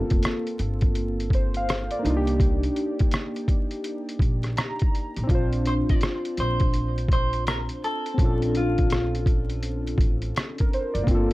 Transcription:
Already playing: A#3 C4 F4 A4
0.10 F1, kick, closed hi-hat
0.23 cross-stick, closed hi-hat
0.47 closed hi-hat
0.59 G1, closed hi-hat
0.81 kick, closed hi-hat
0.95 closed hi-hat
1.20 closed hi-hat
1.30 kick, closed hi-hat
1.35 C5
1.54 F5, closed hi-hat
1.69 cross-stick, closed hi-hat
1.91 D5, closed hi-hat
1.99 A#3 D4
2.05 C2 D#4, closed hi-hat
2.10 F4
2.17 G4
2.27 closed hi-hat
2.40 kick, closed hi-hat
2.63 closed hi-hat
2.76 closed hi-hat
2.99 kick, closed hi-hat
3.11 cross-stick, closed hi-hat
3.36 closed hi-hat
3.48 kick, closed hi-hat
3.71 closed hi-hat
3.84 closed hi-hat
4.09 closed hi-hat
4.19 A#1, kick, closed hi-hat
4.43 cross-stick, closed hi-hat
4.57 A#5, cross-stick, closed hi-hat
4.79 kick, closed hi-hat
4.95 closed hi-hat
5.16 A1, closed hi-hat
5.23 C4 D4
5.29 A#1 F4, kick, closed hi-hat
5.35 C5
5.53 closed hi-hat
5.66 C5, closed hi-hat
5.89 A1 D5, kick, closed hi-hat
6.01 cross-stick, closed hi-hat
6.25 closed hi-hat
6.37 A#1 C5, closed hi-hat
6.60 kick, closed hi-hat
6.74 closed hi-hat
6.98 closed hi-hat
7.08 kick, closed hi-hat
7.13 C5
7.33 closed hi-hat
7.47 A#4, cross-stick, closed hi-hat
7.69 closed hi-hat
7.84 A4, closed hi-hat
8.06 closed hi-hat
8.14 C4 C#4, kick
8.18 A#1 F4, closed hi-hat
8.24 D4 A4
8.42 closed hi-hat
8.55 F4, closed hi-hat
8.78 kick, closed hi-hat
8.90 cross-stick, closed hi-hat
9.15 closed hi-hat
9.26 kick, closed hi-hat
9.50 closed hi-hat
9.63 closed hi-hat
9.87 closed hi-hat
9.98 A1, kick, closed hi-hat
10.22 closed hi-hat
10.36 cross-stick, closed hi-hat
10.58 A#4, kick, closed hi-hat
10.73 C5, closed hi-hat
10.94 F#1 D5, closed hi-hat
11.04 G1 A#3 C4, kick
11.08 F4, closed hi-hat
11.15 A4

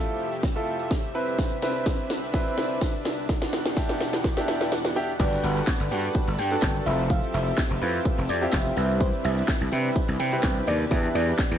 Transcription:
Already playing: F2 C3 A3 E4 F4 G4 A4 E5
0.08 shaker
0.20 shaker
0.32 shaker
0.43 kick, snare, shaker
0.56 E4 F4 A4, shaker
0.67 shaker
0.79 shaker
0.91 kick, snare, shaker
1.04 shaker
1.14 C2 C4 D4 E4 B4, shaker
1.27 shaker
1.38 kick, snare, closed hi-hat, tambourine, shaker
1.51 shaker
1.62 C4 E4 B4, snare, closed hi-hat, tambourine, shaker
1.75 shaker
1.86 kick, snare, closed hi-hat, tambourine, shaker
1.99 shaker
2.10 snare, closed hi-hat, tambourine, shaker
2.22 shaker
2.33 C4 E4 B4, kick, snare, closed hi-hat, tambourine, shaker
2.47 shaker
2.58 snare, closed hi-hat, tambourine, shaker
2.70 shaker
2.81 kick, snare, closed hi-hat, tambourine, shaker
2.94 shaker
3.05 snare, closed hi-hat, tambourine, shaker
3.18 shaker
3.29 E2 B2 G4 F#5, kick, snare, closed hi-hat, tambourine, shaker
3.42 snare, shaker
3.53 snare, open hi-hat, shaker
3.65 snare, shaker
3.76 D4 E4 G4, kick, snare, closed hi-hat, tambourine, shaker
3.89 snare, shaker
4.00 snare, open hi-hat, tambourine, shaker
4.13 snare, shaker
4.24 kick, snare, closed hi-hat, shaker
4.37 D4 E4 G4, snare, shaker
4.48 snare, open hi-hat, tambourine, shaker
4.60 snare, shaker
4.72 snare, closed hi-hat, tambourine, shaker
4.85 snare, shaker
4.96 D4 E4 G4, open hi-hat, tambourine, shaker
5.08 shaker
5.19 G1 G3 B3 D4 F#4 G4 A4 B4 D5 F#5, kick, closed hi-hat, crash, tambourine, shaker
5.32 shaker
5.43 G1 F#5, open hi-hat, tambourine, shaker
5.56 shaker
5.67 kick, snare, clap, closed hi-hat, tambourine, shaker
5.80 G1, shaker
5.91 G2 B3 D4 F#4 G4, open hi-hat, tambourine, shaker
6.03 shaker
6.15 kick, closed hi-hat, tambourine, shaker
6.27 G1, shaker
6.39 G2 G5, open hi-hat, tambourine, shaker
6.51 B3 D4 F#4 A4, shaker
6.62 G1 G5, kick, snare, clap, closed hi-hat, tambourine, shaker
6.75 shaker
6.86 F1 F3 C4 E4 F4 G4 A4 E5, open hi-hat, tambourine, shaker
6.99 shaker
7.10 F5, kick, closed hi-hat, tambourine, shaker
7.23 shaker
7.34 F1 E5, open hi-hat, tambourine, shaker
7.46 shaker
7.57 kick, snare, clap, closed hi-hat, tambourine, shaker
7.70 F1, shaker
7.81 F2 C4 E4 F4 B4, open hi-hat, tambourine, shaker
7.94 shaker
8.05 kick, closed hi-hat, shaker
8.18 F1, shaker
8.29 F2 D5, open hi-hat, tambourine, shaker
8.41 C4 E4 F4 G4, shaker
8.53 F1 E5, kick, snare, clap, closed hi-hat, tambourine, shaker
8.66 shaker
8.77 C2 C3 G3 C4 D4 E4 G4 B4 E5, open hi-hat, tambourine, shaker
8.89 shaker
9.00 C5, kick, closed hi-hat, tambourine, shaker
9.13 shaker
9.24 C2 E5, open hi-hat, tambourine, shaker
9.37 shaker
9.48 kick, snare, clap, closed hi-hat, tambourine, shaker
9.61 C2, shaker
9.72 C3 C4 E4 G4 B4, open hi-hat, tambourine, shaker
9.84 shaker
9.96 kick, closed hi-hat, tambourine, shaker
10.08 C2, shaker
10.20 C3 G5, open hi-hat, tambourine, shaker
10.32 C4 E4 G4 B4, shaker
10.43 C2 G5, kick, snare, clap, closed hi-hat, tambourine, shaker
10.56 shaker
10.67 D#2 D5, open hi-hat, tambourine, shaker
10.80 shaker
10.91 E2 E3 D4 E4 G4 B4 E5 F#5, kick, closed hi-hat, tambourine, shaker
11.04 shaker
11.15 E2 D5, open hi-hat, shaker
11.27 shaker
11.38 kick, snare, clap, closed hi-hat, tambourine, shaker
11.51 E2, shaker

